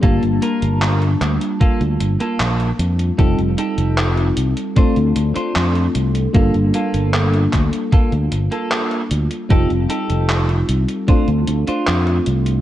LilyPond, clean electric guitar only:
\new Staff \with { instrumentName = "Clean electric guitar" } { \time 4/4 \key g \minor \tempo 4 = 76 <bes f' a'>16 r16 <bes f' bes'>8. r8. <bes f' a'>16 r8 <bes f' a'>8. r8 | <ees' g' a'>16 r16 <ees' g' a'>8. r8. <d' f' c''>16 r8 <d' f' c''>8. r8 | <bes f' a'>16 r16 <bes f' a'>8. r8. <bes f' a'>16 r8 <bes f' a'>8. r8 | <ees' g' a'>16 r16 <ees' g' a'>8. r8. <d' f' c''>16 r8 <d' f' c''>8. r8 | }